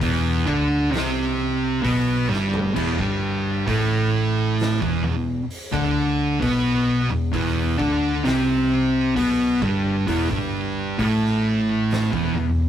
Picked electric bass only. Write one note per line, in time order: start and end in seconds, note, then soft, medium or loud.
0.01 0.44 E1 loud
0.47 0.90 D2 medium
0.92 1.80 C2 medium
1.84 2.27 B1 loud
2.29 2.72 G1 loud
2.76 2.97 E1 medium
2.99 3.64 G1 medium
3.67 4.77 A1 loud
4.82 5.02 E1 medium
5.03 5.46 E1 medium
5.73 6.38 D2 medium
6.42 7.06 B1 medium
7.10 7.31 E1 medium
7.33 7.75 E1 loud
7.79 8.21 D2 medium
8.26 9.12 C2 loud
9.16 9.59 B1 loud
9.62 10.04 G1 loud
10.08 10.29 E1 medium
10.31 10.95 G1 loud
10.99 12.09 A1 loud
12.13 12.34 E1 medium
12.36 12.69 E1 medium